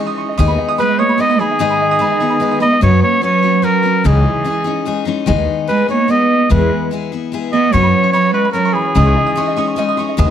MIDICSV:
0, 0, Header, 1, 6, 480
1, 0, Start_track
1, 0, Key_signature, 5, "minor"
1, 0, Tempo, 408441
1, 448, Time_signature, 3, 2, 24, 8
1, 12108, End_track
2, 0, Start_track
2, 0, Title_t, "Upright piano"
2, 0, Program_c, 0, 0
2, 0, Note_on_c, 0, 75, 75
2, 0, Note_on_c, 0, 85, 74
2, 78, Note_on_c, 0, 87, 99
2, 191, Note_off_c, 0, 85, 0
2, 208, Note_on_c, 0, 85, 77
2, 318, Note_off_c, 0, 75, 0
2, 336, Note_on_c, 0, 75, 74
2, 425, Note_off_c, 0, 87, 0
2, 443, Note_on_c, 0, 87, 96
2, 448, Note_off_c, 0, 85, 0
2, 452, Note_off_c, 0, 75, 0
2, 560, Note_on_c, 0, 83, 78
2, 678, Note_on_c, 0, 75, 75
2, 788, Note_off_c, 0, 87, 0
2, 805, Note_on_c, 0, 87, 110
2, 902, Note_off_c, 0, 83, 0
2, 920, Note_on_c, 0, 83, 76
2, 1024, Note_off_c, 0, 75, 0
2, 1041, Note_on_c, 0, 75, 75
2, 1145, Note_off_c, 0, 87, 0
2, 1162, Note_on_c, 0, 87, 104
2, 1265, Note_off_c, 0, 83, 0
2, 1282, Note_on_c, 0, 83, 80
2, 1391, Note_off_c, 0, 75, 0
2, 1408, Note_on_c, 0, 75, 86
2, 1509, Note_off_c, 0, 87, 0
2, 1527, Note_on_c, 0, 87, 100
2, 1633, Note_off_c, 0, 83, 0
2, 1650, Note_on_c, 0, 83, 80
2, 1759, Note_off_c, 0, 75, 0
2, 1777, Note_on_c, 0, 75, 73
2, 1878, Note_off_c, 0, 87, 0
2, 1889, Note_off_c, 0, 83, 0
2, 1892, Note_off_c, 0, 75, 0
2, 1896, Note_on_c, 0, 87, 102
2, 2002, Note_on_c, 0, 83, 76
2, 2130, Note_on_c, 0, 75, 72
2, 2230, Note_off_c, 0, 87, 0
2, 2248, Note_on_c, 0, 87, 108
2, 2347, Note_off_c, 0, 83, 0
2, 2364, Note_on_c, 0, 83, 85
2, 2461, Note_off_c, 0, 75, 0
2, 2478, Note_on_c, 0, 75, 72
2, 2577, Note_off_c, 0, 87, 0
2, 2595, Note_on_c, 0, 87, 94
2, 2687, Note_off_c, 0, 83, 0
2, 2704, Note_on_c, 0, 83, 77
2, 2813, Note_off_c, 0, 75, 0
2, 2831, Note_on_c, 0, 75, 75
2, 2938, Note_off_c, 0, 87, 0
2, 2956, Note_on_c, 0, 87, 94
2, 3052, Note_off_c, 0, 83, 0
2, 3070, Note_on_c, 0, 83, 73
2, 3175, Note_off_c, 0, 75, 0
2, 3193, Note_on_c, 0, 75, 72
2, 3318, Note_off_c, 0, 83, 0
2, 3320, Note_off_c, 0, 75, 0
2, 3321, Note_off_c, 0, 87, 0
2, 9089, Note_on_c, 0, 85, 95
2, 9204, Note_on_c, 0, 83, 79
2, 9332, Note_on_c, 0, 73, 75
2, 9424, Note_off_c, 0, 85, 0
2, 9442, Note_on_c, 0, 85, 102
2, 9551, Note_off_c, 0, 83, 0
2, 9568, Note_on_c, 0, 83, 84
2, 9659, Note_off_c, 0, 73, 0
2, 9677, Note_on_c, 0, 73, 74
2, 9784, Note_off_c, 0, 85, 0
2, 9802, Note_on_c, 0, 85, 95
2, 9909, Note_off_c, 0, 83, 0
2, 9927, Note_on_c, 0, 83, 80
2, 10029, Note_off_c, 0, 73, 0
2, 10047, Note_on_c, 0, 73, 80
2, 10149, Note_off_c, 0, 85, 0
2, 10167, Note_on_c, 0, 85, 96
2, 10267, Note_off_c, 0, 83, 0
2, 10284, Note_on_c, 0, 83, 78
2, 10383, Note_off_c, 0, 73, 0
2, 10401, Note_on_c, 0, 73, 70
2, 10523, Note_on_c, 0, 87, 99
2, 10526, Note_off_c, 0, 73, 0
2, 10528, Note_off_c, 0, 83, 0
2, 10529, Note_off_c, 0, 85, 0
2, 10646, Note_on_c, 0, 85, 74
2, 10773, Note_on_c, 0, 75, 76
2, 10872, Note_off_c, 0, 87, 0
2, 10890, Note_on_c, 0, 87, 99
2, 11000, Note_off_c, 0, 85, 0
2, 11018, Note_on_c, 0, 85, 83
2, 11115, Note_off_c, 0, 75, 0
2, 11133, Note_on_c, 0, 75, 76
2, 11235, Note_off_c, 0, 87, 0
2, 11252, Note_on_c, 0, 87, 101
2, 11355, Note_off_c, 0, 85, 0
2, 11373, Note_on_c, 0, 85, 78
2, 11478, Note_off_c, 0, 75, 0
2, 11495, Note_on_c, 0, 75, 82
2, 11601, Note_off_c, 0, 87, 0
2, 11618, Note_on_c, 0, 87, 94
2, 11712, Note_off_c, 0, 85, 0
2, 11730, Note_on_c, 0, 85, 77
2, 11838, Note_off_c, 0, 75, 0
2, 11856, Note_on_c, 0, 75, 77
2, 11957, Note_off_c, 0, 87, 0
2, 11971, Note_off_c, 0, 85, 0
2, 11975, Note_off_c, 0, 75, 0
2, 11975, Note_on_c, 0, 87, 100
2, 12108, Note_off_c, 0, 87, 0
2, 12108, End_track
3, 0, Start_track
3, 0, Title_t, "Trumpet"
3, 0, Program_c, 1, 56
3, 0, Note_on_c, 1, 68, 91
3, 174, Note_off_c, 1, 68, 0
3, 929, Note_on_c, 1, 71, 106
3, 1162, Note_on_c, 1, 73, 103
3, 1179, Note_off_c, 1, 71, 0
3, 1418, Note_on_c, 1, 75, 115
3, 1435, Note_off_c, 1, 73, 0
3, 1645, Note_on_c, 1, 68, 99
3, 1663, Note_off_c, 1, 75, 0
3, 3062, Note_off_c, 1, 68, 0
3, 3070, Note_on_c, 1, 75, 110
3, 3301, Note_off_c, 1, 75, 0
3, 3321, Note_on_c, 1, 73, 98
3, 3547, Note_off_c, 1, 73, 0
3, 3560, Note_on_c, 1, 73, 111
3, 3786, Note_off_c, 1, 73, 0
3, 3803, Note_on_c, 1, 73, 109
3, 4281, Note_on_c, 1, 70, 109
3, 4298, Note_off_c, 1, 73, 0
3, 4770, Note_on_c, 1, 68, 92
3, 4788, Note_off_c, 1, 70, 0
3, 5969, Note_off_c, 1, 68, 0
3, 6678, Note_on_c, 1, 71, 95
3, 6906, Note_off_c, 1, 71, 0
3, 6928, Note_on_c, 1, 73, 101
3, 7177, Note_on_c, 1, 75, 121
3, 7194, Note_off_c, 1, 73, 0
3, 7649, Note_off_c, 1, 75, 0
3, 7656, Note_on_c, 1, 71, 86
3, 8099, Note_off_c, 1, 71, 0
3, 8840, Note_on_c, 1, 75, 100
3, 9078, Note_on_c, 1, 73, 115
3, 9095, Note_off_c, 1, 75, 0
3, 9538, Note_off_c, 1, 73, 0
3, 9545, Note_on_c, 1, 73, 107
3, 9780, Note_off_c, 1, 73, 0
3, 9792, Note_on_c, 1, 71, 94
3, 10006, Note_off_c, 1, 71, 0
3, 10013, Note_on_c, 1, 70, 93
3, 10262, Note_on_c, 1, 68, 96
3, 10280, Note_off_c, 1, 70, 0
3, 11718, Note_off_c, 1, 68, 0
3, 12108, End_track
4, 0, Start_track
4, 0, Title_t, "Steel-string acoustic guitar"
4, 0, Program_c, 2, 25
4, 0, Note_on_c, 2, 56, 67
4, 0, Note_on_c, 2, 61, 71
4, 0, Note_on_c, 2, 63, 75
4, 0, Note_on_c, 2, 68, 76
4, 441, Note_on_c, 2, 51, 91
4, 448, Note_off_c, 2, 56, 0
4, 449, Note_off_c, 2, 61, 0
4, 452, Note_on_c, 2, 56, 96
4, 453, Note_off_c, 2, 63, 0
4, 458, Note_on_c, 2, 59, 93
4, 458, Note_on_c, 2, 63, 95
4, 462, Note_off_c, 2, 68, 0
4, 467, Note_on_c, 2, 68, 108
4, 916, Note_off_c, 2, 56, 0
4, 921, Note_on_c, 2, 56, 67
4, 924, Note_off_c, 2, 51, 0
4, 932, Note_off_c, 2, 59, 0
4, 937, Note_on_c, 2, 59, 74
4, 942, Note_off_c, 2, 63, 0
4, 947, Note_on_c, 2, 63, 70
4, 953, Note_off_c, 2, 68, 0
4, 958, Note_on_c, 2, 68, 68
4, 1369, Note_off_c, 2, 56, 0
4, 1384, Note_on_c, 2, 56, 64
4, 1392, Note_off_c, 2, 59, 0
4, 1393, Note_off_c, 2, 63, 0
4, 1397, Note_on_c, 2, 59, 65
4, 1402, Note_off_c, 2, 68, 0
4, 1408, Note_on_c, 2, 63, 67
4, 1416, Note_on_c, 2, 68, 67
4, 1620, Note_off_c, 2, 68, 0
4, 1634, Note_on_c, 2, 68, 56
4, 1635, Note_off_c, 2, 56, 0
4, 1640, Note_off_c, 2, 63, 0
4, 1642, Note_off_c, 2, 59, 0
4, 1654, Note_on_c, 2, 63, 47
4, 1667, Note_on_c, 2, 59, 49
4, 1868, Note_off_c, 2, 59, 0
4, 1869, Note_on_c, 2, 44, 88
4, 1870, Note_off_c, 2, 63, 0
4, 1872, Note_on_c, 2, 51, 88
4, 1878, Note_on_c, 2, 56, 94
4, 1881, Note_off_c, 2, 68, 0
4, 1883, Note_on_c, 2, 59, 83
4, 1884, Note_on_c, 2, 63, 97
4, 1893, Note_on_c, 2, 68, 101
4, 2323, Note_off_c, 2, 56, 0
4, 2336, Note_off_c, 2, 59, 0
4, 2337, Note_on_c, 2, 56, 76
4, 2349, Note_off_c, 2, 63, 0
4, 2350, Note_on_c, 2, 59, 77
4, 2358, Note_off_c, 2, 44, 0
4, 2359, Note_off_c, 2, 68, 0
4, 2360, Note_off_c, 2, 51, 0
4, 2363, Note_on_c, 2, 63, 73
4, 2374, Note_on_c, 2, 68, 80
4, 2573, Note_off_c, 2, 68, 0
4, 2585, Note_off_c, 2, 63, 0
4, 2587, Note_on_c, 2, 68, 66
4, 2592, Note_off_c, 2, 56, 0
4, 2593, Note_off_c, 2, 59, 0
4, 2600, Note_on_c, 2, 63, 60
4, 2608, Note_on_c, 2, 59, 55
4, 2618, Note_on_c, 2, 56, 51
4, 2804, Note_off_c, 2, 56, 0
4, 2815, Note_off_c, 2, 59, 0
4, 2818, Note_on_c, 2, 56, 67
4, 2826, Note_off_c, 2, 63, 0
4, 2829, Note_on_c, 2, 59, 67
4, 2837, Note_off_c, 2, 68, 0
4, 2841, Note_on_c, 2, 63, 67
4, 2849, Note_on_c, 2, 68, 80
4, 3044, Note_off_c, 2, 68, 0
4, 3057, Note_off_c, 2, 63, 0
4, 3058, Note_on_c, 2, 68, 65
4, 3065, Note_off_c, 2, 59, 0
4, 3072, Note_off_c, 2, 56, 0
4, 3072, Note_on_c, 2, 63, 55
4, 3079, Note_on_c, 2, 59, 54
4, 3087, Note_on_c, 2, 56, 49
4, 3298, Note_off_c, 2, 56, 0
4, 3303, Note_on_c, 2, 54, 86
4, 3310, Note_off_c, 2, 59, 0
4, 3312, Note_off_c, 2, 68, 0
4, 3314, Note_on_c, 2, 61, 85
4, 3317, Note_off_c, 2, 63, 0
4, 3321, Note_on_c, 2, 66, 84
4, 3326, Note_on_c, 2, 71, 100
4, 3764, Note_off_c, 2, 54, 0
4, 3778, Note_on_c, 2, 54, 62
4, 3789, Note_off_c, 2, 66, 0
4, 3791, Note_off_c, 2, 61, 0
4, 3795, Note_off_c, 2, 71, 0
4, 3796, Note_on_c, 2, 61, 63
4, 3803, Note_on_c, 2, 66, 67
4, 3809, Note_on_c, 2, 71, 73
4, 4011, Note_off_c, 2, 71, 0
4, 4025, Note_on_c, 2, 71, 56
4, 4027, Note_off_c, 2, 66, 0
4, 4033, Note_off_c, 2, 54, 0
4, 4041, Note_off_c, 2, 61, 0
4, 4041, Note_on_c, 2, 66, 49
4, 4056, Note_on_c, 2, 61, 49
4, 4254, Note_off_c, 2, 61, 0
4, 4256, Note_on_c, 2, 54, 60
4, 4266, Note_off_c, 2, 66, 0
4, 4268, Note_on_c, 2, 61, 68
4, 4270, Note_off_c, 2, 71, 0
4, 4280, Note_on_c, 2, 66, 69
4, 4284, Note_on_c, 2, 71, 63
4, 4484, Note_off_c, 2, 71, 0
4, 4498, Note_on_c, 2, 71, 54
4, 4499, Note_off_c, 2, 66, 0
4, 4512, Note_off_c, 2, 54, 0
4, 4513, Note_on_c, 2, 66, 50
4, 4517, Note_off_c, 2, 61, 0
4, 4531, Note_on_c, 2, 61, 48
4, 4751, Note_on_c, 2, 49, 89
4, 4752, Note_off_c, 2, 71, 0
4, 4755, Note_off_c, 2, 61, 0
4, 4759, Note_on_c, 2, 52, 88
4, 4760, Note_off_c, 2, 66, 0
4, 4767, Note_on_c, 2, 56, 82
4, 4769, Note_on_c, 2, 61, 90
4, 4773, Note_on_c, 2, 63, 86
4, 4775, Note_on_c, 2, 68, 91
4, 5219, Note_off_c, 2, 56, 0
4, 5220, Note_off_c, 2, 61, 0
4, 5224, Note_on_c, 2, 56, 61
4, 5234, Note_on_c, 2, 61, 69
4, 5235, Note_off_c, 2, 63, 0
4, 5239, Note_off_c, 2, 49, 0
4, 5240, Note_on_c, 2, 63, 71
4, 5243, Note_off_c, 2, 52, 0
4, 5251, Note_off_c, 2, 68, 0
4, 5256, Note_on_c, 2, 68, 79
4, 5442, Note_off_c, 2, 68, 0
4, 5456, Note_on_c, 2, 68, 67
4, 5457, Note_off_c, 2, 63, 0
4, 5471, Note_off_c, 2, 61, 0
4, 5471, Note_on_c, 2, 63, 64
4, 5475, Note_off_c, 2, 56, 0
4, 5485, Note_on_c, 2, 61, 59
4, 5493, Note_on_c, 2, 56, 53
4, 5690, Note_off_c, 2, 56, 0
4, 5699, Note_off_c, 2, 61, 0
4, 5704, Note_on_c, 2, 56, 65
4, 5707, Note_off_c, 2, 63, 0
4, 5712, Note_off_c, 2, 68, 0
4, 5713, Note_on_c, 2, 61, 79
4, 5721, Note_on_c, 2, 63, 80
4, 5731, Note_on_c, 2, 68, 78
4, 5923, Note_off_c, 2, 68, 0
4, 5935, Note_off_c, 2, 63, 0
4, 5937, Note_on_c, 2, 68, 69
4, 5949, Note_off_c, 2, 61, 0
4, 5949, Note_on_c, 2, 63, 63
4, 5956, Note_off_c, 2, 56, 0
4, 5963, Note_on_c, 2, 61, 61
4, 5976, Note_on_c, 2, 56, 59
4, 6178, Note_off_c, 2, 56, 0
4, 6181, Note_on_c, 2, 51, 93
4, 6183, Note_off_c, 2, 63, 0
4, 6190, Note_off_c, 2, 61, 0
4, 6192, Note_off_c, 2, 68, 0
4, 6192, Note_on_c, 2, 56, 101
4, 6195, Note_on_c, 2, 59, 99
4, 6197, Note_on_c, 2, 63, 111
4, 6205, Note_on_c, 2, 68, 115
4, 6664, Note_off_c, 2, 56, 0
4, 6669, Note_on_c, 2, 56, 67
4, 6675, Note_off_c, 2, 51, 0
4, 6678, Note_off_c, 2, 63, 0
4, 6682, Note_off_c, 2, 59, 0
4, 6687, Note_on_c, 2, 59, 73
4, 6692, Note_on_c, 2, 63, 70
4, 6701, Note_off_c, 2, 68, 0
4, 6706, Note_on_c, 2, 68, 66
4, 6901, Note_off_c, 2, 68, 0
4, 6915, Note_on_c, 2, 68, 53
4, 6918, Note_off_c, 2, 63, 0
4, 6919, Note_off_c, 2, 56, 0
4, 6928, Note_off_c, 2, 59, 0
4, 6932, Note_on_c, 2, 63, 52
4, 6943, Note_on_c, 2, 59, 50
4, 7140, Note_off_c, 2, 59, 0
4, 7145, Note_on_c, 2, 56, 62
4, 7150, Note_off_c, 2, 63, 0
4, 7154, Note_on_c, 2, 59, 66
4, 7158, Note_off_c, 2, 68, 0
4, 7164, Note_on_c, 2, 63, 66
4, 7173, Note_on_c, 2, 68, 72
4, 7626, Note_off_c, 2, 56, 0
4, 7633, Note_on_c, 2, 52, 78
4, 7636, Note_off_c, 2, 68, 0
4, 7639, Note_off_c, 2, 59, 0
4, 7640, Note_on_c, 2, 56, 87
4, 7643, Note_off_c, 2, 63, 0
4, 7644, Note_on_c, 2, 59, 91
4, 7648, Note_on_c, 2, 64, 93
4, 7650, Note_on_c, 2, 68, 97
4, 8107, Note_off_c, 2, 56, 0
4, 8121, Note_off_c, 2, 52, 0
4, 8121, Note_on_c, 2, 56, 68
4, 8129, Note_off_c, 2, 64, 0
4, 8130, Note_off_c, 2, 68, 0
4, 8131, Note_off_c, 2, 59, 0
4, 8136, Note_on_c, 2, 59, 67
4, 8143, Note_on_c, 2, 64, 63
4, 8150, Note_on_c, 2, 68, 68
4, 8352, Note_off_c, 2, 68, 0
4, 8365, Note_off_c, 2, 56, 0
4, 8366, Note_off_c, 2, 64, 0
4, 8366, Note_on_c, 2, 68, 57
4, 8373, Note_off_c, 2, 59, 0
4, 8380, Note_on_c, 2, 64, 54
4, 8392, Note_on_c, 2, 59, 48
4, 8600, Note_on_c, 2, 56, 66
4, 8601, Note_off_c, 2, 59, 0
4, 8608, Note_off_c, 2, 68, 0
4, 8610, Note_off_c, 2, 64, 0
4, 8615, Note_on_c, 2, 59, 74
4, 8624, Note_on_c, 2, 64, 76
4, 8632, Note_on_c, 2, 68, 80
4, 8832, Note_off_c, 2, 68, 0
4, 8845, Note_off_c, 2, 56, 0
4, 8846, Note_off_c, 2, 64, 0
4, 8847, Note_on_c, 2, 68, 58
4, 8853, Note_off_c, 2, 59, 0
4, 8860, Note_on_c, 2, 64, 50
4, 8874, Note_on_c, 2, 59, 42
4, 9079, Note_on_c, 2, 54, 85
4, 9084, Note_off_c, 2, 59, 0
4, 9088, Note_off_c, 2, 68, 0
4, 9088, Note_on_c, 2, 61, 93
4, 9093, Note_off_c, 2, 64, 0
4, 9097, Note_on_c, 2, 66, 94
4, 9103, Note_on_c, 2, 71, 94
4, 9543, Note_off_c, 2, 54, 0
4, 9557, Note_on_c, 2, 54, 62
4, 9564, Note_off_c, 2, 66, 0
4, 9565, Note_off_c, 2, 61, 0
4, 9570, Note_on_c, 2, 61, 67
4, 9577, Note_off_c, 2, 71, 0
4, 9578, Note_on_c, 2, 66, 70
4, 9590, Note_on_c, 2, 71, 70
4, 10014, Note_off_c, 2, 54, 0
4, 10025, Note_off_c, 2, 61, 0
4, 10028, Note_on_c, 2, 54, 65
4, 10038, Note_off_c, 2, 66, 0
4, 10039, Note_on_c, 2, 61, 65
4, 10047, Note_off_c, 2, 71, 0
4, 10052, Note_on_c, 2, 66, 64
4, 10062, Note_on_c, 2, 71, 61
4, 10513, Note_off_c, 2, 61, 0
4, 10515, Note_on_c, 2, 49, 84
4, 10518, Note_off_c, 2, 54, 0
4, 10521, Note_on_c, 2, 52, 84
4, 10522, Note_on_c, 2, 56, 83
4, 10527, Note_on_c, 2, 61, 86
4, 10528, Note_off_c, 2, 66, 0
4, 10531, Note_off_c, 2, 71, 0
4, 10532, Note_on_c, 2, 63, 97
4, 10536, Note_on_c, 2, 68, 98
4, 10989, Note_off_c, 2, 56, 0
4, 10994, Note_on_c, 2, 56, 74
4, 10996, Note_off_c, 2, 61, 0
4, 11004, Note_off_c, 2, 49, 0
4, 11007, Note_off_c, 2, 52, 0
4, 11010, Note_off_c, 2, 63, 0
4, 11010, Note_on_c, 2, 61, 76
4, 11015, Note_on_c, 2, 63, 83
4, 11020, Note_off_c, 2, 68, 0
4, 11024, Note_on_c, 2, 68, 84
4, 11226, Note_off_c, 2, 68, 0
4, 11237, Note_off_c, 2, 63, 0
4, 11240, Note_on_c, 2, 68, 60
4, 11243, Note_off_c, 2, 56, 0
4, 11247, Note_off_c, 2, 61, 0
4, 11251, Note_on_c, 2, 63, 65
4, 11261, Note_on_c, 2, 61, 60
4, 11270, Note_on_c, 2, 56, 51
4, 11457, Note_off_c, 2, 56, 0
4, 11471, Note_on_c, 2, 56, 68
4, 11474, Note_off_c, 2, 61, 0
4, 11483, Note_off_c, 2, 63, 0
4, 11486, Note_off_c, 2, 68, 0
4, 11488, Note_on_c, 2, 61, 81
4, 11497, Note_on_c, 2, 63, 77
4, 11504, Note_on_c, 2, 68, 76
4, 11705, Note_off_c, 2, 68, 0
4, 11719, Note_on_c, 2, 68, 64
4, 11722, Note_off_c, 2, 56, 0
4, 11723, Note_off_c, 2, 63, 0
4, 11725, Note_off_c, 2, 61, 0
4, 11737, Note_on_c, 2, 63, 58
4, 11740, Note_on_c, 2, 61, 54
4, 11754, Note_on_c, 2, 56, 55
4, 11948, Note_off_c, 2, 56, 0
4, 11952, Note_on_c, 2, 51, 99
4, 11958, Note_off_c, 2, 63, 0
4, 11962, Note_off_c, 2, 68, 0
4, 11962, Note_on_c, 2, 56, 106
4, 11963, Note_off_c, 2, 61, 0
4, 11967, Note_on_c, 2, 59, 108
4, 11972, Note_on_c, 2, 63, 114
4, 11976, Note_on_c, 2, 68, 111
4, 12108, Note_off_c, 2, 51, 0
4, 12108, Note_off_c, 2, 56, 0
4, 12108, Note_off_c, 2, 59, 0
4, 12108, Note_off_c, 2, 63, 0
4, 12108, Note_off_c, 2, 68, 0
4, 12108, End_track
5, 0, Start_track
5, 0, Title_t, "Cello"
5, 0, Program_c, 3, 42
5, 0, Note_on_c, 3, 52, 81
5, 171, Note_off_c, 3, 52, 0
5, 940, Note_on_c, 3, 56, 88
5, 1178, Note_on_c, 3, 58, 93
5, 1196, Note_off_c, 3, 56, 0
5, 1400, Note_on_c, 3, 59, 90
5, 1418, Note_off_c, 3, 58, 0
5, 1650, Note_on_c, 3, 51, 88
5, 1668, Note_off_c, 3, 59, 0
5, 3078, Note_off_c, 3, 51, 0
5, 3085, Note_on_c, 3, 59, 90
5, 3309, Note_off_c, 3, 59, 0
5, 3327, Note_on_c, 3, 54, 100
5, 3550, Note_off_c, 3, 54, 0
5, 3582, Note_on_c, 3, 58, 83
5, 3798, Note_off_c, 3, 58, 0
5, 3806, Note_on_c, 3, 54, 94
5, 4288, Note_off_c, 3, 54, 0
5, 4288, Note_on_c, 3, 54, 81
5, 4770, Note_on_c, 3, 52, 83
5, 4788, Note_off_c, 3, 54, 0
5, 5969, Note_off_c, 3, 52, 0
5, 6703, Note_on_c, 3, 56, 83
5, 6920, Note_off_c, 3, 56, 0
5, 6942, Note_on_c, 3, 58, 88
5, 7184, Note_on_c, 3, 59, 89
5, 7202, Note_off_c, 3, 58, 0
5, 7657, Note_off_c, 3, 59, 0
5, 7667, Note_on_c, 3, 56, 80
5, 8105, Note_off_c, 3, 56, 0
5, 8856, Note_on_c, 3, 59, 93
5, 9075, Note_on_c, 3, 54, 95
5, 9092, Note_off_c, 3, 59, 0
5, 9544, Note_off_c, 3, 54, 0
5, 9551, Note_on_c, 3, 54, 96
5, 9784, Note_off_c, 3, 54, 0
5, 9791, Note_on_c, 3, 56, 85
5, 10019, Note_off_c, 3, 56, 0
5, 10026, Note_on_c, 3, 54, 81
5, 10269, Note_on_c, 3, 52, 74
5, 10287, Note_off_c, 3, 54, 0
5, 11722, Note_off_c, 3, 52, 0
5, 12108, End_track
6, 0, Start_track
6, 0, Title_t, "Upright bass"
6, 0, Program_c, 4, 32
6, 453, Note_on_c, 4, 39, 110
6, 654, Note_off_c, 4, 39, 0
6, 3317, Note_on_c, 4, 42, 107
6, 3525, Note_off_c, 4, 42, 0
6, 4760, Note_on_c, 4, 37, 115
6, 4966, Note_off_c, 4, 37, 0
6, 6212, Note_on_c, 4, 39, 105
6, 6414, Note_off_c, 4, 39, 0
6, 7653, Note_on_c, 4, 40, 110
6, 7855, Note_off_c, 4, 40, 0
6, 9092, Note_on_c, 4, 42, 101
6, 9295, Note_off_c, 4, 42, 0
6, 10524, Note_on_c, 4, 37, 108
6, 10731, Note_off_c, 4, 37, 0
6, 11969, Note_on_c, 4, 39, 116
6, 12108, Note_off_c, 4, 39, 0
6, 12108, End_track
0, 0, End_of_file